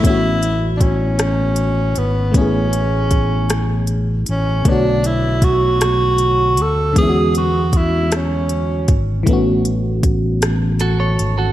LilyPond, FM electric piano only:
\new Staff \with { instrumentName = "FM electric piano" } { \time 6/8 \key a \major \tempo 4. = 52 <a b cis' e' fis'>2. | <a b cis' e' gis'>2. | <cis d a b fis' cis''>2. | <d gis b cis' e' fis'>2. |
<e a b cis' fis'>2. | }